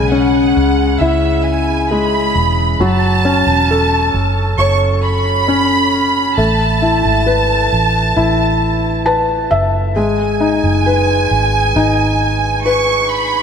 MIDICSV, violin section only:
0, 0, Header, 1, 2, 480
1, 0, Start_track
1, 0, Key_signature, 4, "minor"
1, 0, Tempo, 895522
1, 1501, Time_signature, 4, 2, 24, 8
1, 7196, End_track
2, 0, Start_track
2, 0, Title_t, "Violin section"
2, 0, Program_c, 0, 48
2, 0, Note_on_c, 0, 80, 99
2, 58, Note_on_c, 0, 78, 88
2, 61, Note_off_c, 0, 80, 0
2, 539, Note_off_c, 0, 78, 0
2, 539, Note_on_c, 0, 76, 81
2, 776, Note_on_c, 0, 80, 95
2, 780, Note_off_c, 0, 76, 0
2, 1018, Note_off_c, 0, 80, 0
2, 1018, Note_on_c, 0, 83, 99
2, 1456, Note_off_c, 0, 83, 0
2, 1462, Note_on_c, 0, 83, 64
2, 1500, Note_off_c, 0, 83, 0
2, 1500, Note_on_c, 0, 81, 121
2, 2457, Note_on_c, 0, 85, 94
2, 2460, Note_off_c, 0, 81, 0
2, 2564, Note_off_c, 0, 85, 0
2, 2694, Note_on_c, 0, 83, 119
2, 3396, Note_off_c, 0, 83, 0
2, 3419, Note_on_c, 0, 81, 106
2, 5100, Note_off_c, 0, 81, 0
2, 5340, Note_on_c, 0, 80, 113
2, 6759, Note_off_c, 0, 80, 0
2, 6780, Note_on_c, 0, 85, 102
2, 7020, Note_off_c, 0, 85, 0
2, 7021, Note_on_c, 0, 83, 103
2, 7196, Note_off_c, 0, 83, 0
2, 7196, End_track
0, 0, End_of_file